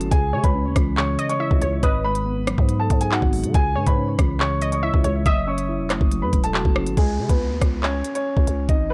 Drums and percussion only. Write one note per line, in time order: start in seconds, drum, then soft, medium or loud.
0.01 closed hi-hat medium
0.12 kick loud
0.12 closed hi-hat medium
0.44 kick loud
0.44 closed hi-hat medium
0.76 kick loud
0.76 cross-stick medium
0.76 closed hi-hat medium
0.97 clap loud
1.19 closed hi-hat medium
1.29 closed hi-hat medium
1.51 kick medium
1.62 closed hi-hat medium
1.83 kick loud
1.83 closed hi-hat medium
2.15 closed hi-hat medium
2.47 cross-stick loud
2.47 closed hi-hat medium
2.58 kick loud
2.69 closed hi-hat medium
2.90 kick medium
2.90 closed hi-hat medium
3.01 closed hi-hat medium
3.12 clap loud
3.22 kick medium
3.33 open hi-hat medium
3.44 closed hi-hat medium
3.54 kick loud
3.54 closed hi-hat medium
3.87 kick loud
3.87 closed hi-hat medium
4.19 kick loud
4.19 cross-stick medium
4.19 closed hi-hat medium
4.40 clap loud
4.61 closed hi-hat medium
4.72 closed hi-hat medium
4.94 kick medium
5.04 closed hi-hat medium
5.26 kick loud
5.26 closed hi-hat medium
5.58 closed hi-hat medium
5.90 cross-stick medium
5.90 clap medium
5.90 closed hi-hat medium
6.01 kick loud
6.11 closed hi-hat medium
6.33 kick medium
6.33 closed hi-hat medium
6.44 closed hi-hat medium
6.54 clap loud
6.65 kick medium
6.76 cross-stick loud
6.87 closed hi-hat medium
6.97 kick loud
6.97 closed hi-hat medium
7.29 kick medium
7.29 closed hi-hat medium
7.62 kick medium
7.62 cross-stick medium
7.62 closed hi-hat medium
7.83 clap loud
8.04 closed hi-hat medium
8.15 closed hi-hat medium
8.37 kick medium
8.47 closed hi-hat medium
8.69 kick loud
8.69 closed hi-hat medium